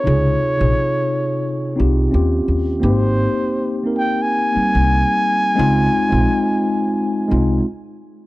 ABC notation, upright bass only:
X:1
M:4/4
L:1/16
Q:"Swing 16ths" 1/4=87
K:Dblyd
V:1 name="Upright bass" clef=bass
D,,2 z B,,, z6 C,,2 E,,2 E,,2 | A,,,3 z8 C,,2 z3 | D,,2 z B,,, z6 C,,2 z4 |]